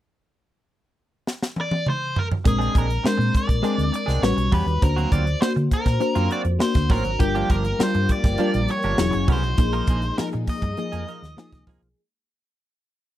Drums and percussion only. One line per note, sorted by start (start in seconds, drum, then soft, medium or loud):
1.27 snare medium
1.43 snare medium
1.56 high tom medium
1.71 high tom medium
1.86 mid tom medium
2.16 floor tom medium
2.32 floor tom loud
2.45 kick loud
2.45 closed hi-hat medium
2.61 closed hi-hat soft
2.75 kick medium
2.75 closed hi-hat medium
2.90 closed hi-hat medium
3.06 snare loud
3.21 closed hi-hat soft
3.35 kick medium
3.35 closed hi-hat medium
3.49 kick medium
3.49 closed hi-hat soft
3.64 closed hi-hat medium
3.79 closed hi-hat medium
3.94 closed hi-hat medium
4.08 snare soft
4.08 closed hi-hat soft
4.23 snare medium
4.38 closed hi-hat medium
4.52 kick medium
4.52 open hi-hat medium
4.68 closed hi-hat soft
4.82 kick loud
4.82 closed hi-hat medium
4.98 closed hi-hat soft
5.12 kick medium
5.12 closed hi-hat medium
5.27 closed hi-hat soft
5.42 snare loud
5.57 closed hi-hat soft
5.71 kick medium
5.71 closed hi-hat medium
5.86 kick medium
5.86 snare soft
5.86 closed hi-hat soft
6.01 closed hi-hat medium
6.15 closed hi-hat medium
6.31 closed hi-hat medium
6.45 closed hi-hat soft
6.60 snare medium
6.74 kick medium
6.74 snare soft
6.74 closed hi-hat medium
6.90 kick loud
6.90 open hi-hat medium
7.05 closed hi-hat soft
7.20 kick loud
7.20 closed hi-hat medium
7.35 closed hi-hat soft
7.50 kick medium
7.50 closed hi-hat medium
7.64 closed hi-hat soft
7.80 snare loud
7.94 closed hi-hat soft
8.09 kick medium
8.09 closed hi-hat medium
8.24 kick medium
8.24 snare soft
8.24 closed hi-hat soft
8.38 closed hi-hat medium
8.54 closed hi-hat medium
8.68 closed hi-hat medium
8.83 closed hi-hat soft
8.98 snare loud
9.13 closed hi-hat medium
9.28 kick loud
9.28 open hi-hat medium
9.44 closed hi-hat soft
9.58 kick loud
9.58 closed hi-hat medium
9.73 closed hi-hat soft
9.87 kick medium
9.87 closed hi-hat medium
10.02 closed hi-hat medium
10.18 snare loud
10.33 closed hi-hat soft
10.47 kick medium
10.47 open hi-hat medium
10.62 kick medium
10.62 closed hi-hat soft
10.77 closed hi-hat medium
10.93 closed hi-hat medium
11.08 closed hi-hat medium
11.23 snare soft
11.23 closed hi-hat soft
11.38 snare loud
11.52 kick medium
11.52 snare soft
11.52 closed hi-hat medium
11.67 kick medium
11.67 open hi-hat medium